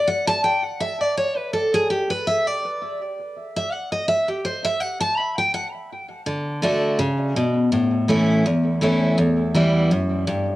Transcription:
0, 0, Header, 1, 2, 480
1, 0, Start_track
1, 0, Key_signature, 2, "major"
1, 0, Tempo, 364299
1, 584, Time_signature, 4, 2, 24, 8
1, 13910, End_track
2, 0, Start_track
2, 0, Title_t, "Steel-string acoustic guitar"
2, 0, Program_c, 0, 25
2, 99, Note_on_c, 0, 78, 96
2, 355, Note_off_c, 0, 78, 0
2, 360, Note_on_c, 0, 81, 126
2, 572, Note_off_c, 0, 81, 0
2, 578, Note_on_c, 0, 79, 91
2, 846, Note_off_c, 0, 79, 0
2, 846, Note_on_c, 0, 78, 113
2, 1055, Note_off_c, 0, 78, 0
2, 1059, Note_on_c, 0, 76, 96
2, 1326, Note_off_c, 0, 76, 0
2, 1326, Note_on_c, 0, 74, 93
2, 1535, Note_off_c, 0, 74, 0
2, 1546, Note_on_c, 0, 73, 85
2, 1802, Note_off_c, 0, 73, 0
2, 1802, Note_on_c, 0, 71, 85
2, 2013, Note_off_c, 0, 71, 0
2, 2018, Note_on_c, 0, 69, 88
2, 2278, Note_off_c, 0, 69, 0
2, 2291, Note_on_c, 0, 68, 100
2, 2497, Note_off_c, 0, 68, 0
2, 2504, Note_on_c, 0, 67, 81
2, 2761, Note_off_c, 0, 67, 0
2, 2768, Note_on_c, 0, 71, 99
2, 2976, Note_off_c, 0, 71, 0
2, 2992, Note_on_c, 0, 76, 98
2, 3254, Note_off_c, 0, 76, 0
2, 3254, Note_on_c, 0, 74, 92
2, 3945, Note_off_c, 0, 74, 0
2, 4696, Note_on_c, 0, 76, 99
2, 4904, Note_off_c, 0, 76, 0
2, 4904, Note_on_c, 0, 78, 108
2, 5160, Note_off_c, 0, 78, 0
2, 5165, Note_on_c, 0, 75, 86
2, 5371, Note_off_c, 0, 75, 0
2, 5376, Note_on_c, 0, 76, 108
2, 5635, Note_off_c, 0, 76, 0
2, 5641, Note_on_c, 0, 67, 50
2, 5851, Note_off_c, 0, 67, 0
2, 5859, Note_on_c, 0, 72, 83
2, 6117, Note_off_c, 0, 72, 0
2, 6120, Note_on_c, 0, 76, 110
2, 6327, Note_off_c, 0, 76, 0
2, 6327, Note_on_c, 0, 78, 84
2, 6588, Note_off_c, 0, 78, 0
2, 6593, Note_on_c, 0, 81, 108
2, 6814, Note_off_c, 0, 81, 0
2, 6814, Note_on_c, 0, 83, 107
2, 7074, Note_off_c, 0, 83, 0
2, 7086, Note_on_c, 0, 79, 93
2, 7291, Note_off_c, 0, 79, 0
2, 7296, Note_on_c, 0, 78, 88
2, 7457, Note_off_c, 0, 78, 0
2, 8251, Note_on_c, 0, 50, 88
2, 8708, Note_off_c, 0, 50, 0
2, 8724, Note_on_c, 0, 50, 87
2, 8737, Note_on_c, 0, 57, 95
2, 8745, Note_on_c, 0, 62, 92
2, 8751, Note_on_c, 0, 66, 88
2, 9191, Note_off_c, 0, 50, 0
2, 9197, Note_off_c, 0, 57, 0
2, 9201, Note_off_c, 0, 62, 0
2, 9204, Note_off_c, 0, 66, 0
2, 9207, Note_on_c, 0, 49, 87
2, 9672, Note_off_c, 0, 49, 0
2, 9700, Note_on_c, 0, 47, 84
2, 10159, Note_off_c, 0, 47, 0
2, 10170, Note_on_c, 0, 45, 87
2, 10648, Note_on_c, 0, 52, 83
2, 10658, Note_on_c, 0, 57, 92
2, 10664, Note_on_c, 0, 61, 90
2, 10672, Note_on_c, 0, 64, 97
2, 11094, Note_off_c, 0, 45, 0
2, 11114, Note_off_c, 0, 52, 0
2, 11119, Note_off_c, 0, 57, 0
2, 11122, Note_off_c, 0, 61, 0
2, 11126, Note_off_c, 0, 64, 0
2, 11143, Note_on_c, 0, 40, 90
2, 11612, Note_on_c, 0, 52, 81
2, 11621, Note_on_c, 0, 57, 82
2, 11628, Note_on_c, 0, 61, 93
2, 11637, Note_on_c, 0, 64, 100
2, 12061, Note_off_c, 0, 40, 0
2, 12077, Note_off_c, 0, 52, 0
2, 12081, Note_off_c, 0, 57, 0
2, 12085, Note_off_c, 0, 61, 0
2, 12089, Note_off_c, 0, 64, 0
2, 12094, Note_on_c, 0, 40, 89
2, 12577, Note_on_c, 0, 52, 89
2, 12585, Note_on_c, 0, 55, 93
2, 12591, Note_on_c, 0, 59, 96
2, 12597, Note_on_c, 0, 64, 97
2, 13016, Note_off_c, 0, 40, 0
2, 13039, Note_off_c, 0, 52, 0
2, 13043, Note_off_c, 0, 55, 0
2, 13046, Note_off_c, 0, 59, 0
2, 13049, Note_off_c, 0, 64, 0
2, 13059, Note_on_c, 0, 42, 92
2, 13520, Note_off_c, 0, 42, 0
2, 13535, Note_on_c, 0, 43, 91
2, 13910, Note_off_c, 0, 43, 0
2, 13910, End_track
0, 0, End_of_file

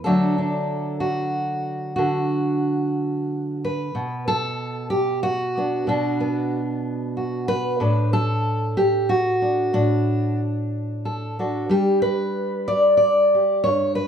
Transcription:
0, 0, Header, 1, 2, 480
1, 0, Start_track
1, 0, Tempo, 652884
1, 27, Time_signature, 6, 3, 24, 8
1, 3388, Tempo, 641026
1, 6748, Tempo, 651466
1, 10418, End_track
2, 0, Start_track
2, 0, Title_t, "Steel-string acoustic guitar"
2, 0, Program_c, 0, 25
2, 30, Note_on_c, 0, 69, 78
2, 41, Note_on_c, 0, 50, 66
2, 45, Note_on_c, 0, 54, 45
2, 49, Note_on_c, 0, 57, 46
2, 54, Note_on_c, 0, 62, 46
2, 277, Note_off_c, 0, 62, 0
2, 280, Note_on_c, 0, 62, 41
2, 734, Note_off_c, 0, 69, 0
2, 737, Note_on_c, 0, 66, 66
2, 1429, Note_off_c, 0, 50, 0
2, 1431, Note_off_c, 0, 66, 0
2, 1440, Note_on_c, 0, 66, 60
2, 1458, Note_on_c, 0, 50, 66
2, 2618, Note_off_c, 0, 54, 0
2, 2659, Note_off_c, 0, 66, 0
2, 2680, Note_on_c, 0, 71, 81
2, 2854, Note_off_c, 0, 62, 0
2, 2882, Note_off_c, 0, 50, 0
2, 2902, Note_on_c, 0, 47, 65
2, 2919, Note_off_c, 0, 57, 0
2, 3141, Note_off_c, 0, 71, 0
2, 3144, Note_on_c, 0, 69, 86
2, 3604, Note_off_c, 0, 69, 0
2, 3607, Note_on_c, 0, 67, 84
2, 3850, Note_off_c, 0, 67, 0
2, 3853, Note_on_c, 0, 66, 87
2, 4110, Note_on_c, 0, 59, 36
2, 4114, Note_on_c, 0, 62, 39
2, 4316, Note_off_c, 0, 59, 0
2, 4324, Note_off_c, 0, 47, 0
2, 4333, Note_on_c, 0, 47, 68
2, 4342, Note_off_c, 0, 62, 0
2, 4345, Note_on_c, 0, 62, 71
2, 4583, Note_on_c, 0, 59, 41
2, 4812, Note_off_c, 0, 66, 0
2, 5305, Note_on_c, 0, 66, 46
2, 5536, Note_off_c, 0, 66, 0
2, 5539, Note_on_c, 0, 71, 106
2, 5752, Note_off_c, 0, 59, 0
2, 5775, Note_off_c, 0, 62, 0
2, 5776, Note_off_c, 0, 47, 0
2, 5778, Note_on_c, 0, 45, 69
2, 5784, Note_on_c, 0, 62, 50
2, 6023, Note_off_c, 0, 71, 0
2, 6026, Note_on_c, 0, 69, 96
2, 6505, Note_on_c, 0, 67, 81
2, 6743, Note_off_c, 0, 69, 0
2, 6746, Note_off_c, 0, 67, 0
2, 6746, Note_on_c, 0, 66, 89
2, 6983, Note_off_c, 0, 62, 0
2, 6986, Note_on_c, 0, 62, 38
2, 7193, Note_off_c, 0, 45, 0
2, 7218, Note_on_c, 0, 45, 60
2, 7219, Note_off_c, 0, 62, 0
2, 7222, Note_on_c, 0, 62, 69
2, 7701, Note_off_c, 0, 66, 0
2, 8191, Note_on_c, 0, 69, 46
2, 8424, Note_off_c, 0, 62, 0
2, 8429, Note_off_c, 0, 69, 0
2, 8440, Note_on_c, 0, 62, 38
2, 8443, Note_on_c, 0, 66, 35
2, 8448, Note_on_c, 0, 69, 33
2, 8636, Note_off_c, 0, 45, 0
2, 8648, Note_off_c, 0, 66, 0
2, 8650, Note_off_c, 0, 69, 0
2, 8663, Note_on_c, 0, 55, 60
2, 8672, Note_on_c, 0, 67, 79
2, 8899, Note_off_c, 0, 67, 0
2, 8902, Note_on_c, 0, 71, 94
2, 9387, Note_on_c, 0, 74, 90
2, 9596, Note_off_c, 0, 74, 0
2, 9605, Note_on_c, 0, 74, 83
2, 9868, Note_off_c, 0, 71, 0
2, 9879, Note_on_c, 0, 67, 38
2, 10091, Note_off_c, 0, 74, 0
2, 10094, Note_on_c, 0, 73, 92
2, 10112, Note_on_c, 0, 43, 72
2, 10116, Note_off_c, 0, 55, 0
2, 10116, Note_off_c, 0, 62, 0
2, 10116, Note_off_c, 0, 67, 0
2, 10324, Note_off_c, 0, 73, 0
2, 10326, Note_on_c, 0, 71, 85
2, 10418, Note_off_c, 0, 43, 0
2, 10418, Note_off_c, 0, 71, 0
2, 10418, End_track
0, 0, End_of_file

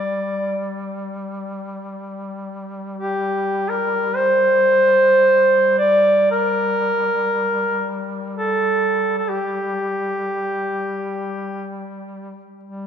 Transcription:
0, 0, Header, 1, 3, 480
1, 0, Start_track
1, 0, Key_signature, -2, "minor"
1, 0, Tempo, 500000
1, 12354, End_track
2, 0, Start_track
2, 0, Title_t, "Duduk"
2, 0, Program_c, 0, 69
2, 0, Note_on_c, 0, 74, 70
2, 625, Note_off_c, 0, 74, 0
2, 2862, Note_on_c, 0, 67, 65
2, 3538, Note_on_c, 0, 70, 71
2, 3553, Note_off_c, 0, 67, 0
2, 3986, Note_on_c, 0, 72, 86
2, 4001, Note_off_c, 0, 70, 0
2, 5529, Note_off_c, 0, 72, 0
2, 5549, Note_on_c, 0, 74, 81
2, 6017, Note_off_c, 0, 74, 0
2, 6058, Note_on_c, 0, 70, 86
2, 7658, Note_off_c, 0, 70, 0
2, 8028, Note_on_c, 0, 69, 72
2, 8784, Note_off_c, 0, 69, 0
2, 8810, Note_on_c, 0, 69, 46
2, 8916, Note_on_c, 0, 67, 59
2, 8930, Note_off_c, 0, 69, 0
2, 11204, Note_off_c, 0, 67, 0
2, 12354, End_track
3, 0, Start_track
3, 0, Title_t, "Duduk"
3, 0, Program_c, 1, 69
3, 0, Note_on_c, 1, 55, 39
3, 11964, Note_off_c, 1, 55, 0
3, 12127, Note_on_c, 1, 55, 37
3, 12354, Note_off_c, 1, 55, 0
3, 12354, End_track
0, 0, End_of_file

